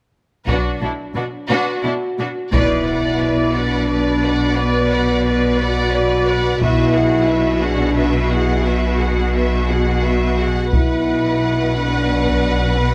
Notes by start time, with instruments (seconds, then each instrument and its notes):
0.47 double bass section B1, cello section B2, french horn section F#3 D4, viola section D4, violin section F#4 B4, taiko
0.81 cello section B2, viola section D4, violin section E4 A4
1.15 cello section B2, viola section D4, violin section F#4 B4
1.49 cello section B2, viola section D4, french horn section F#4, violin section F#4 B4
1.84 cello section B2, viola section D4, violin section E4 A4
2.19 cello section B2, viola section D4, violin section F#4 B4
2.53 double bass section B1, cello section B2, french horn section E4, violin section B4 D5, viola section D5, taiko, impact
2.87 viola section B4, violin section D5 F#5
3.21 violin section B4 D5, viola section D5
3.55 french horn section D4, viola section B4, violin section D5 F#5
3.89 violin section B4 D5, viola section D5
4.23 viola section B4, violin section D5 F#5
4.56 french horn section B3, violin section B4 D5, viola section D5
4.90 viola section B4, violin section D5 F#5
5.26 violin section B4 D5, viola section D5
5.59 french horn section F#4, viola section B4, violin section D5 F#5
5.93 violin section B4 D5, viola section D5
6.27 viola section B4, violin section D5 F#5
6.61 double bass section B1, cello section B2, french horn section E4, viola section F#4, violin section B4 E5, taiko
6.94 violin section F#4 F#5, viola section G#4
7.28 viola section F#4, violin section B4 E5
7.62 french horn section D4, violin section F#4 F#5, viola section G#4
7.97 viola section F#4, violin section B4 E5
8.31 french horn section E4, violin section F#4 F#5, viola section G#4
8.65 french horn section B3, viola section F#4, violin section B4 E5
9.00 violin section F#4 F#5, viola section G#4
9.35 viola section F#4, violin section B4 E5
9.70 french horn section F#4, violin section F#4 F#5, viola section G#4
10.04 viola section F#4, violin section B4 E5
10.40 violin section F#4 F#5, viola section G#4
10.73 double bass section B1, cello section B2, french horn section E4, violin section B4 F#5, viola section B4, taiko
11.76 french horn section D4
12.26 taiko
12.76 french horn section B3